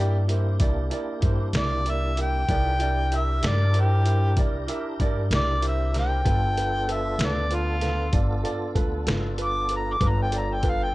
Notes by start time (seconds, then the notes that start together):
Already playing: G2 A#3 D4 E4 G4 A#4
0.00 D5
0.28 E4 A#4 C5, closed hi-hat
0.60 C2 E4 A#4 D5, kick, closed hi-hat
0.91 E4 A#4 D5, closed hi-hat
1.21 G2 E4 A#4 C5, kick, closed hi-hat
1.53 C2 E4 A#4 D5, snare, closed hi-hat
1.59 D5
1.85 E4 A#4 D5, closed hi-hat
1.90 E5
2.17 E4 A#4 E5, closed hi-hat
2.22 G5
2.48 C2 D#4 E4 F4 G#4 A#4 B4 D5, kick, closed hi-hat
2.79 D4 E4 G4 A#4 D5, closed hi-hat
3.11 E4 A#4 E5, closed hi-hat
3.17 E5
3.41 G2 E4 A#4 D5, snare, closed hi-hat
3.48 D5
3.74 E4 A#4 C5, closed hi-hat
3.80 G4
4.04 E4 A#4 C5, closed hi-hat
4.36 C2 E4 A#4 D5, kick, closed hi-hat
4.68 E4 A#4 E5, closed hi-hat
5.00 G2 E4 A#4 D5, kick, closed hi-hat
5.31 C2 E4 A#4 D5, snare, closed hi-hat
5.36 D5
5.61 E4 A#4 C5, closed hi-hat
5.68 E5
5.93 E4 A#4 C5, snare, closed hi-hat
5.99 G5
6.24 G1 B3 D4 F4 A4 B4, kick, closed hi-hat
6.56 F4 A4 B4, closed hi-hat
6.87 F4 A4 B4, closed hi-hat
6.92 E5
7.18 D2 F4 A4 B4, snare, closed hi-hat
7.25 D5
7.50 F4 A4 B4, closed hi-hat
7.55 F4
7.80 F4 A4 B4, snare, closed hi-hat
8.12 G1 F4 A4 D5, kick, closed hi-hat
8.43 F4 A4 D5, closed hi-hat
8.74 D2 F4 A4 B4, kick, closed hi-hat
9.05 G1 F4 A4 B4, snare, closed hi-hat
9.37 F4 A4 B4, closed hi-hat
9.44 D6
9.69 F4 A4 B4, closed hi-hat
9.76 A#5
9.93 D6
10.00 G1 B3 D4 F4 A4 B4, kick, closed hi-hat
10.08 A#5
10.22 G5
10.32 F4 A4 D5, closed hi-hat
10.38 A#5
10.54 G5
10.63 F4 A4 B4, kick, closed hi-hat
10.69 F5
10.84 G5